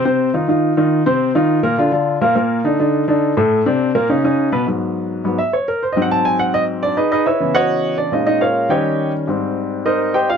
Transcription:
X:1
M:4/4
L:1/8
Q:1/4=208
K:Cm
V:1 name="Upright piano"
[C,Cc]2 [E,EF] [E,EF]2 [E,EF]2 [C,Cc]- | [C,Cc] [E,EF]2 [B,,B,B] [D,DF] [D,DF]2 [B,,B,B] | [B,,B,B]2 [D,DE] [D,DE]2 [D,DE]2 [=A,,=A,=A]- | [=A,,=A,=A] [C,CD]2 [B,,B,B] [^C,^C^D] [C,CD]2 [=B,,=B,=B] |
[K:C#dor] z4 z e c A | (3^B d f =a g f d z [=D=d] | [DGBd] [DGBd] [EBce]2 [Fcdf]3 [=D=d] | [Dd] [Dd] [^EAc^e]2 [=Gcd=g]3 z |
z4 [DA^Bd]2 [=GBd=g] [^E^e] |]
V:2 name="Upright piano" clef=bass
z8 | z8 | z8 | z8 |
[K:C#dor] [G,,F,B,]4 [G,,F,B,] z3 | z [G,,F,^B,]6- [G,,F,B,] | z3 [C,E,B,]4- [C,E,B,] | [A,,G,C]4 [D,=G,C]4 |
[G,,=G,^B,]8 |]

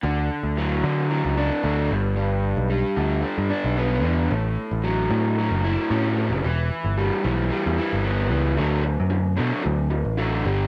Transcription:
X:1
M:4/4
L:1/16
Q:1/4=112
K:D
V:1 name="Overdriven electric guitar" clef=bass
D,4 F,2 D,2 F,2 D2 A,2 G,,2 | G,,4 G,2 D,2 G,2 D2 B,2 D,2 | A,,4 F,2 A,,2 F,2 E2 C2 A,,2 | E,4 G,2 E,2 G,2 E2 B,2 E,2 |
[D,F,A,]2 [D,F,]2 [D,F,]2 [D,F,A,]2 [D,F,]2 [D,F,]2 [D,F,A,]2 [G,,D,G,]2 |]
V:2 name="Picked electric bass" clef=bass
D,,2 z D,,3 D,3 C,,2 z D,,2 G,,,2- | G,,,3 B,,,2 z D,,2 z G,, z B,,,3 E,,2 | A,,,2 z A,,,3 A,,3 F,,,2 z A,,3 F,,, | E,,,2 z G,,,2 z B,,,2 z E,, z G,,,3 C,,2 |
D,,3 F,,3 B,, z D,,3 A,,,3 G,,,2 |]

